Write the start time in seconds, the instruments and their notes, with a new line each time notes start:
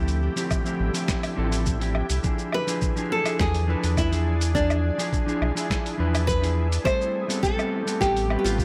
Already playing: analog synth bass D2, ambient pad D3 E4 G4, clean electric guitar F3 C4 E4 G4, nylon-string guitar E4
0.08 open hi-hat, shaker
0.36 clean electric guitar F3 C4 E4 G4, open hi-hat, shaker
0.51 kick, low woodblock, shaker
0.64 clean electric guitar F3 C4 E4 G4, shaker
0.80 analog synth bass A1
0.93 clean electric guitar F3 C4 E4 G4, open hi-hat, shaker
1.08 kick, snare, shaker
1.23 open hi-hat, low woodblock, shaker
1.36 analog synth bass A1, clean electric guitar F3 C4 E4 A4
1.52 open hi-hat, shaker
1.66 kick, shaker
1.80 clean electric guitar F3 C4 E4 G4, open hi-hat, shaker
1.95 low woodblock
2.10 analog synth bass C2, open hi-hat, shaker
2.23 clean electric guitar F3 D4 E4 G#4, ambient pad D4 G#4, kick, shaker
2.39 shaker
2.52 nylon-string guitar B4, low woodblock
2.67 clean electric guitar F3 D4 E4 G#4, open hi-hat, shaker
2.82 kick, shaker
2.96 clean electric guitar F3 D4 E4 G#4, shaker
3.12 nylon-string guitar A4
3.24 clean electric guitar F3 D4 E4 G#4, open hi-hat, low woodblock, shaker
3.39 analog synth bass E2, nylon-string guitar G#4, kick, snare, shaker
3.55 open hi-hat, shaker
3.67 clean electric guitar F3 D4 E4 B4
3.84 analog synth bass E2, open hi-hat, shaker
3.97 nylon-string guitar E4, kick, low woodblock, shaker
4.11 clean electric guitar F3 D4 E4 G#4, open hi-hat, shaker
4.41 open hi-hat, shaker
4.54 clean electric guitar F3 D4 E4 G#4, nylon-string guitar D4, ambient pad E4, kick, shaker
4.70 low woodblock, shaker
4.98 clean electric guitar F3 D4 E4 G#4, open hi-hat, shaker
5.13 kick, shaker
5.26 clean electric guitar F3 D4 E4 G#4, shaker
5.41 analog synth bass B1, low woodblock
5.55 clean electric guitar F3 D4 E4 G#4, open hi-hat, shaker
5.70 kick, snare, shaker
5.86 open hi-hat, shaker
5.97 analog synth bass E2, clean electric guitar F3 D4 E4 B4
6.15 open hi-hat, low woodblock, shaker
6.27 nylon-string guitar B4, kick, shaker
6.41 clean electric guitar F3 D4 E4 G#4, open hi-hat, shaker
6.72 open hi-hat, shaker
6.84 clean electric guitar G3 A3 C4 A4, ambient pad A3 G4, nylon-string guitar C5, kick, low woodblock, shaker
7.01 shaker
7.28 clean electric guitar G3 B3 C4 A4, open hi-hat, shaker
7.43 nylon-string guitar A4, kick, shaker
7.57 clean electric guitar G3 B3 C4 A4, low woodblock, shaker
7.85 clean electric guitar G3 B3 C4 A4, open hi-hat, shaker
8.01 analog synth bass A1, nylon-string guitar G4, kick, snare, shaker
8.17 open hi-hat, shaker
8.28 clean electric guitar G3 B3 C4 B4, low woodblock
8.39 nylon-string guitar G4
8.44 analog synth bass A1, nylon-string guitar F4, open hi-hat, shaker
8.58 kick, shaker